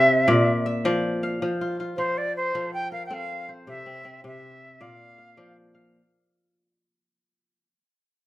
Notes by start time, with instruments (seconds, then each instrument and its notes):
Already playing: kora C3 C4 C5, flute E5
0.28 kora A#2 D5
0.66 kora E5
0.85 kora F3 D5
1.23 kora F5
1.42 kora F3
1.61 kora F4
1.80 kora F4
1.97 kora F3, flute C5
2.18 flute D5
2.36 flute C5
2.55 kora F3 A4
2.73 flute G5
2.92 kora A#4, flute F5
3.06 flute G5
3.10 kora C4 A4, flute F5
3.49 kora C5
3.67 kora C3, flute E5
3.86 kora C4
4.05 kora C4
4.24 kora C3, flute E5
4.81 kora A#2 D5, flute F5
5.18 kora F5
5.37 kora F3 D5
5.75 kora F5